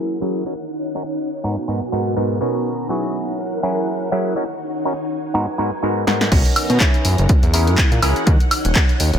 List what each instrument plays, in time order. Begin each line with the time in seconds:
Already playing: clav F#3 C#4 E4 G#4 A#4, string machine E4 A#4 F#5
0.21 clav F#3 C#4 E4 G#4 A#4
0.46 clav C#4 D#4 F#4 A#4, string machine D#4 C#5
0.95 clav C#4 D#4 F#4 A#4
1.44 clav G#2 B3 D#4 F#4 A#4, string machine B3 F#4 G#5
1.68 clav G#2 B3 D#4 F#4 A#4
1.92 clav G#2 B3 D#4 F#4 A#4
2.16 clav G#2 B3 D#4 F#4 A#4
2.41 clav B2 C#4 D#4 F#4 A#4, string machine D#4 A#5
2.89 clav F#3 C#4 E4 G#4 C#5
3.14 string machine E4 A#4 F#5
3.63 clav F#3 C#4 E4 G#4 A#4
4.12 clav F#3 C#4 E4 G#4 A#4
4.36 clav C#4 D#4 F#4 A#4, string machine D#4 C#5
4.85 clav C#4 D#4 F#4 A#4
5.34 clav G#2 B3 D#4 F#4 A#4, string machine F#4 B4 G#5
5.58 clav G#2 B3 D#4 F#4 A#4
5.83 clav G#2 B3 D#4 F#4 A#4
6.07 clav G#2 B3 D#4 F#4 A#4, snare
6.21 snare
6.31 analog synth bass B1, string machine B3 D#4 A#5, clav C#4 D#4 F#4 A#4, kick, closed hi-hat, crash
6.45 closed hi-hat
6.56 open hi-hat, high woodblock
6.70 analog synth bass B2, closed hi-hat
6.80 clav C#4 E4 G#4 C#5, kick, clap, closed hi-hat
6.94 closed hi-hat
7.05 analog synth bass F#2, string machine E4 A#4 F#5, open hi-hat
7.18 analog synth bass F#1, closed hi-hat
7.29 analog synth bass E2, kick, closed hi-hat
7.43 analog synth bass E2, closed hi-hat
7.53 clav C#4 E4 G#4 A#4, open hi-hat
7.67 analog synth bass F#2, closed hi-hat
7.78 kick, clap, closed hi-hat
7.92 analog synth bass A#2, closed hi-hat
8.02 analog synth bass C#2, clav C#4 E4 G#4 A#4, open hi-hat, high woodblock
8.16 closed hi-hat
8.26 analog synth bass D#2, clav C#4 D#4 F#4 A#4, string machine D#4 C#5, kick, closed hi-hat
8.40 closed hi-hat
8.51 open hi-hat, high woodblock
8.65 analog synth bass D#1, closed hi-hat
8.75 clav C#4 D#4 F#4 A#4, kick, clap, closed hi-hat
8.89 closed hi-hat
9.00 analog synth bass D#2, open hi-hat
9.14 analog synth bass D#1, closed hi-hat